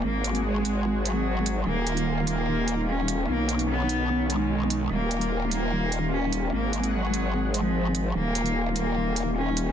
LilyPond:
<<
  \new Staff \with { instrumentName = "Analog synth pad" } { \time 4/4 \key ees \minor \tempo 4 = 148 << { <ges' aes'>1 | <bes f'>1 | <b, cis'>1 | <bes f'>1 |
<aes' ges''>1 | <bes f'>1 | } \\ { aes1 | ees1 | dis1~ | dis1 |
aes1 | ees1 | } >> }
  \new Staff \with { instrumentName = "Cello" } { \time 4/4 \key ees \minor bes4 aes4. ges4. | bes4. bes4. des'4 | bes4 b4. aes4. | bes4. bes4. des'4 |
bes4 ges4. f4. | bes4. bes4. des'4 | }
  \new Staff \with { instrumentName = "Wobble bass" } { \clef bass \time 4/4 \key ees \minor aes,,1 | ees,,1 | b,,1 | ees,,1 |
aes,,1 | ees,,1 | }
  \new DrumStaff \with { instrumentName = "Drums" } \drummode { \time 4/4 r8 hh16 hh16 r8 hh8 r8 hh8 r8 hh8 | r8 hh16 hh16 r8 hh8 r8 hh8 r8 hh8 | r8 hh16 hh16 r8 hh8 r8 hh8 r8 hh8 | r8 hh16 hh16 r8 hh8 r8 hh8 r8 hh8 |
r8 hh16 hh16 r8 hh8 r8 hh8 r8 hh8 | r8 hh16 hh16 r8 hh8 r8 hh8 r8 hh8 | }
>>